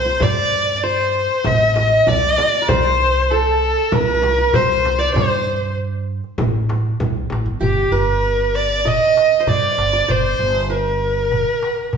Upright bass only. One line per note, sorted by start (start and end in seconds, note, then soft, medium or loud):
0.00 0.12 C2 medium
0.22 1.26 G2 medium
1.45 1.97 A1 medium
2.06 2.33 C2 medium
2.68 3.73 C2 medium
3.92 4.44 C2 loud
4.53 5.05 C2 loud
5.15 6.19 G2 medium
6.38 6.90 A1 loud
7.00 7.26 C2 loud
7.30 7.44 A1 medium
7.46 7.60 G1 medium
7.61 7.87 G1 medium
7.92 8.96 G1 medium
9.47 9.73 G2 medium
9.78 10.04 G1 medium
10.09 10.35 G1 medium
10.39 11.43 G1 medium
11.93 11.97 G2 medium